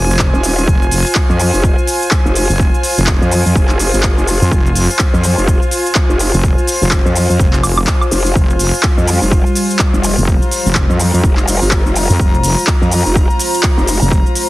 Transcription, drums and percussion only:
0.10 shaker soft
0.19 kick loud
0.19 clap loud
0.19 shaker soft
0.34 shaker soft
0.43 open hi-hat loud
0.43 shaker medium
0.58 shaker soft
0.68 kick loud
0.68 shaker soft
0.82 shaker soft
0.91 open hi-hat loud
0.91 shaker medium
1.06 shaker soft
1.15 kick loud
1.15 clap loud
1.15 shaker soft
1.30 shaker soft
1.39 open hi-hat medium
1.39 shaker medium
1.54 shaker soft
1.64 kick loud
1.64 shaker soft
1.78 shaker soft
1.87 open hi-hat loud
1.87 shaker medium
2.02 shaker soft
2.11 kick loud
2.11 clap loud
2.11 shaker soft
2.26 shaker soft
2.35 open hi-hat medium
2.35 shaker medium
2.50 shaker soft
2.60 kick loud
2.60 shaker soft
2.74 shaker soft
2.83 open hi-hat loud
2.83 shaker medium
2.98 shaker soft
3.07 kick loud
3.07 clap loud
3.07 shaker soft
3.22 shaker soft
3.31 open hi-hat medium
3.31 shaker medium
3.46 shaker soft
3.55 kick loud
3.55 shaker soft
3.69 clap soft
3.69 shaker soft
3.79 open hi-hat loud
3.79 shaker medium
3.94 shaker soft
4.03 kick loud
4.03 clap loud
4.03 shaker soft
4.18 shaker soft
4.27 open hi-hat medium
4.27 shaker medium
4.42 shaker soft
4.51 kick loud
4.51 shaker soft
4.66 shaker soft
4.75 open hi-hat loud
4.75 shaker medium
4.90 shaker soft
4.99 kick loud
4.99 clap loud
4.99 shaker soft
5.14 shaker soft
5.23 open hi-hat medium
5.23 shaker medium
5.38 shaker soft
5.48 kick loud
5.48 shaker soft
5.62 shaker soft
5.71 open hi-hat loud
5.71 shaker medium
5.86 shaker soft
5.95 kick loud
5.95 clap loud
5.95 shaker soft
6.10 shaker soft
6.19 open hi-hat medium
6.19 shaker medium
6.34 shaker soft
6.43 kick loud
6.43 shaker soft
6.58 shaker soft
6.67 open hi-hat loud
6.67 shaker medium
6.82 shaker soft
6.91 kick loud
6.91 clap loud
6.91 shaker soft
7.06 shaker soft
7.16 open hi-hat medium
7.16 shaker medium
7.30 shaker soft
7.39 kick loud
7.39 shaker medium
7.53 clap soft
7.53 shaker soft
7.63 open hi-hat loud
7.63 high woodblock medium
7.63 shaker medium
7.78 high woodblock medium
7.78 shaker soft
7.87 kick loud
7.87 clap loud
7.87 shaker soft
8.01 high woodblock medium
8.01 shaker soft
8.11 open hi-hat medium
8.11 shaker medium
8.26 shaker soft
8.35 kick loud
8.35 shaker soft
8.50 shaker soft
8.59 open hi-hat loud
8.59 shaker medium
8.74 shaker soft
8.83 kick loud
8.83 clap loud
8.83 shaker soft
8.98 shaker soft
9.07 open hi-hat medium
9.07 shaker medium
9.22 shaker soft
9.31 kick loud
9.31 shaker soft
9.46 shaker soft
9.55 open hi-hat loud
9.55 shaker medium
9.70 shaker soft
9.79 kick loud
9.79 clap loud
9.79 shaker soft
9.94 shaker soft
10.03 open hi-hat medium
10.03 shaker medium
10.18 shaker soft
10.28 kick loud
10.28 shaker soft
10.42 shaker soft
10.51 open hi-hat loud
10.51 shaker medium
10.66 shaker soft
10.75 kick loud
10.75 clap loud
10.75 shaker soft
10.90 shaker soft
10.99 open hi-hat loud
10.99 shaker medium
11.14 shaker soft
11.24 kick loud
11.24 shaker soft
11.37 clap soft
11.37 shaker soft
11.48 open hi-hat loud
11.48 shaker medium
11.62 shaker soft
11.71 kick loud
11.71 clap loud
11.71 shaker soft
11.86 shaker soft
11.96 open hi-hat loud
11.96 shaker medium
12.10 shaker soft
12.20 kick loud
12.20 shaker soft
12.34 shaker soft
12.44 open hi-hat loud
12.44 shaker medium
12.58 shaker soft
12.67 kick loud
12.67 clap loud
12.67 shaker soft
12.82 shaker soft
12.91 open hi-hat loud
12.91 shaker medium
13.06 shaker soft
13.16 kick loud
13.16 shaker soft
13.30 shaker soft
13.39 open hi-hat loud
13.39 shaker medium
13.54 shaker soft
13.63 kick loud
13.63 clap loud
13.63 shaker soft
13.78 shaker soft
13.87 open hi-hat loud
13.87 shaker medium
14.02 shaker soft
14.12 kick loud
14.12 shaker soft
14.26 shaker soft
14.35 open hi-hat loud
14.35 shaker medium

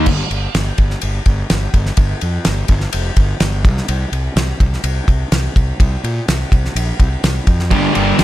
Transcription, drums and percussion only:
0.06 kick loud
0.06 crash loud
0.31 ride medium
0.55 snare loud
0.55 ride medium
0.78 kick medium
0.78 ride medium
0.90 snare soft
1.01 ride medium
1.26 kick medium
1.26 ride medium
1.50 snare loud
1.50 ride medium
1.74 kick medium
1.74 ride medium
1.86 snare soft
1.97 kick loud
1.97 ride medium
2.21 ride medium
2.45 snare loud
2.45 ride loud
2.68 kick medium
2.68 ride medium
2.80 snare soft
2.93 ride loud
3.17 kick medium
3.17 ride medium
3.40 snare loud
3.40 ride medium
3.65 kick loud
3.65 ride medium
3.77 snare soft
3.88 ride medium
4.13 ride medium
4.37 snare loud
4.37 ride medium
4.60 kick medium
4.60 ride medium
4.73 snare soft
4.84 ride medium
5.08 kick medium
5.08 ride medium
5.32 snare loud
5.32 ride medium
5.56 kick medium
5.56 ride medium
5.80 kick loud
5.80 ride medium
6.04 ride medium
6.28 snare loud
6.28 ride loud
6.52 kick medium
6.52 ride medium
6.65 snare soft
6.76 ride loud
7.00 kick medium
7.00 ride medium
7.24 snare loud
7.24 ride medium
7.47 kick medium
7.47 ride medium
7.59 snare soft
7.71 kick loud
7.71 ride medium
7.95 ride medium
8.19 snare loud
8.19 ride loud

